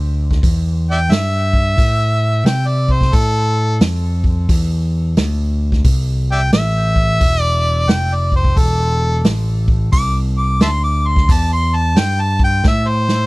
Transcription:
Already playing: picked electric bass D2
0.31 kick, snare
0.43 picked electric bass E2, kick, open hi-hat
0.91 harmonica D5 E5 G5
1.09 picked electric bass G2, harmonica E5, snare, open hi-hat
1.53 kick
1.78 picked electric bass A2, kick, open hi-hat
2.45 picked electric bass C3, harmonica G5, snare, open hi-hat
2.68 harmonica D5
2.88 harmonica C5, kick
3.01 kick, snare
3.13 picked electric bass A2, harmonica A4, kick, open hi-hat
3.81 picked electric bass F2, snare, open hi-hat
4.24 kick
4.49 picked electric bass E2, kick, open hi-hat
5.17 picked electric bass D2, snare, open hi-hat
5.72 kick, snare
5.84 picked electric bass C2, kick, open hi-hat
6.32 harmonica D5 E5 G5
6.52 picked electric bass A1, harmonica E5, snare, open hi-hat
6.96 kick
7.21 picked electric bass E1, kick, open hi-hat
7.41 harmonica D5
7.88 picked electric bass F1, harmonica G5, snare, open hi-hat
8.15 harmonica D5
8.32 kick
8.36 harmonica C5
8.44 kick
8.56 picked electric bass E1, harmonica A4, kick, open hi-hat
9.24 picked electric bass A1, snare, open hi-hat
9.68 kick
9.92 picked electric bass C2, harmonica D6, kick, open hi-hat
10.38 harmonica D6
10.60 picked electric bass D2, harmonica E5 A5 C6, snare, open hi-hat
10.84 harmonica D6
11.07 harmonica C6
11.16 kick, snare
11.29 picked electric bass E2, harmonica A5, kick, open hi-hat
11.53 harmonica C6
11.76 harmonica A5
11.96 picked electric bass G2, harmonica G5, snare, open hi-hat
12.21 harmonica A5
12.39 kick
12.44 harmonica G5
12.64 picked electric bass A2, harmonica E5, kick, snare
12.88 harmonica C5
13.09 snare

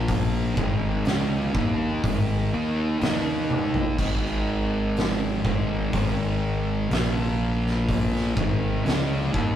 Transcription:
Already playing: fingered electric bass A#1, distorted electric guitar A#2 F3 A#3
0.08 kick, open hi-hat
0.56 fingered electric bass G#1, distorted electric guitar G#2 D#3 G#3, kick
1.05 fingered electric bass C#2, distorted electric guitar C#3 G#3 C#4, snare, open hi-hat
1.55 fingered electric bass D#2, distorted electric guitar D#3 A#3 D#4, kick
2.03 fingered electric bass G#1, distorted electric guitar G#2 D#3 G#3, kick, open hi-hat
2.53 fingered electric bass D#2, distorted electric guitar D#3 A#3 D#4
3.01 fingered electric bass D#2, distorted electric guitar D#3 A#3 D#4, snare, open hi-hat
3.50 high tom
3.74 floor tom
3.98 fingered electric bass G#1, distorted electric guitar G#2 D#3 G#3, kick, open hi-hat, crash
4.25 snare
4.96 snare, open hi-hat
5.45 fingered electric bass G#1, distorted electric guitar G#2 D#3 G#3, kick
5.93 fingered electric bass G#1, distorted electric guitar G#2 D#3 G#3, kick, open hi-hat
6.90 fingered electric bass A#1, distorted electric guitar A#2 F3 A#3, snare, open hi-hat
7.67 snare
7.89 kick, open hi-hat
8.16 snare
8.37 fingered electric bass G#1, distorted electric guitar G#2 D#3 G#3, kick
8.85 fingered electric bass C#2, distorted electric guitar C#3 G#3 C#4, snare, open hi-hat
9.33 fingered electric bass D#2, distorted electric guitar D#3 A#3 D#4, kick

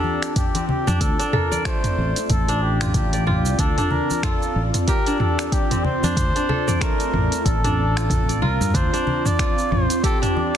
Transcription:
Already playing: ambient pad C4 F4 D5, kora D4 F4 G4, muted trumpet A4
0.04 high conga
0.22 finger snap, closed hi-hat, cabasa
0.36 muted trumpet G4, kick, closed hi-hat, mid tom, cabasa
0.55 kora C4, closed hi-hat, high conga, cabasa
0.69 muted trumpet G4, low conga
0.87 fretless electric bass F2, kora D4, mid tom, high conga, cabasa
1.01 fretless electric bass D2, muted trumpet A4, kick, closed hi-hat, cabasa
1.19 kora D4, closed hi-hat, high bongo, cabasa
1.33 kora A4, muted trumpet A#4, mid tom, low conga
1.51 kora D5, high conga, cabasa
1.65 kora A3, muted trumpet C5, finger snap, kick, closed hi-hat, cabasa
1.84 closed hi-hat, mid tom, cabasa
1.98 fretless electric bass A1
2.16 closed hi-hat, high bongo, cabasa
2.30 fretless electric bass A1, muted trumpet A4, kick, closed hi-hat, mid tom, cabasa
2.48 kora D4, closed hi-hat, cabasa
2.62 muted trumpet G4
2.81 kora F4, finger snap, closed hi-hat, mid tom, cabasa
2.94 fretless electric bass A1, muted trumpet G4, kick, closed hi-hat, low conga, cabasa
3.13 kora D5, closed hi-hat, high conga, cabasa
3.27 kora F4, muted trumpet G4, mid tom, high bongo, low conga
3.45 fretless electric bass C2, cabasa
3.59 fretless electric bass D2, kora D4, muted trumpet A4, kick, closed hi-hat, cabasa
3.78 kora D4, closed hi-hat, mid tom, cabasa
3.91 muted trumpet A#4, high conga, low conga
4.10 high conga, cabasa
4.23 kora F4, muted trumpet A4, finger snap, kick, closed hi-hat, mid tom, cabasa
4.42 cabasa
4.56 fretless electric bass A1
4.74 closed hi-hat, mid tom, high bongo, cabasa
4.88 kora G4, muted trumpet A#4, kick, closed hi-hat, cabasa
5.06 kora D4, closed hi-hat, cabasa
5.20 muted trumpet A4, mid tom, high conga
5.39 finger snap, closed hi-hat, cabasa
5.52 muted trumpet G4, kick, closed hi-hat, cabasa
5.71 kora C4, closed hi-hat, mid tom, high conga, cabasa
5.85 muted trumpet C5, low conga
6.03 fretless electric bass F2, kora D4, high conga, cabasa
6.17 fretless electric bass D2, kick, closed hi-hat, mid tom, cabasa
6.35 kora D4, closed hi-hat, high bongo, cabasa
6.49 kora A4, low conga
6.68 kora D5, mid tom, high conga, cabasa
6.81 kora A3, muted trumpet A#4, finger snap, kick, closed hi-hat, cabasa
7.00 closed hi-hat, cabasa
7.13 fretless electric bass A1, mid tom
7.32 closed hi-hat, high bongo, cabasa
7.45 fretless electric bass A1, muted trumpet A4, kick, closed hi-hat, cabasa
7.64 kora D4, closed hi-hat, mid tom, cabasa
7.97 kora F4, finger snap, closed hi-hat, cabasa
8.10 kick, closed hi-hat, mid tom, low conga, cabasa
8.29 kora D5, closed hi-hat, high conga, cabasa
8.42 fretless electric bass C2, kora F4, muted trumpet A#4, high bongo, low conga
8.61 fretless electric bass G2, mid tom, cabasa
8.74 fretless electric bass D2, kora D4, muted trumpet C5, ambient pad C5, kick, closed hi-hat, mid tom, cabasa
8.93 kora D4, closed hi-hat, cabasa
9.07 high conga, low conga
9.26 muted trumpet D5, mid tom, high conga, cabasa
9.39 kora F4, finger snap, kick, closed hi-hat, cabasa
9.58 cabasa
9.72 fretless electric bass A1, muted trumpet C5, mid tom
9.90 closed hi-hat, high bongo, cabasa
10.04 kora G4, muted trumpet A4, kick, closed hi-hat, cabasa
10.22 kora D4, closed hi-hat, mid tom, cabasa
10.37 muted trumpet D5, high conga

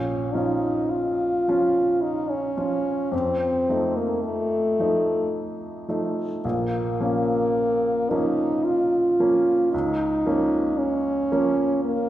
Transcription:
Already playing: grand piano A#1, french horn C#4
0.34 grand piano F3 C#4 F4, french horn D#4
0.90 french horn F4
1.48 grand piano F3 C#4 F4
2.02 french horn D#4
2.31 french horn C#4
2.57 grand piano F3 C#4 F4
3.12 grand piano F2, french horn C4
3.69 grand piano F3 A3 D#4
3.97 french horn A#3
4.24 french horn A3
4.79 grand piano F3 A3 D#4
5.88 grand piano F3 A3 D#4
6.44 grand piano A#1, french horn A#3
7.00 grand piano F3 A#3 C#4
8.10 grand piano F3 A#3 C#4, french horn D#4
8.65 french horn F4
9.19 grand piano F3 A#3 C#4
9.72 grand piano C#2, french horn D#4
10.26 grand piano F3 A#3 C#4
10.78 french horn C#4
11.32 grand piano F3 A#3 C#4
11.85 french horn A#3

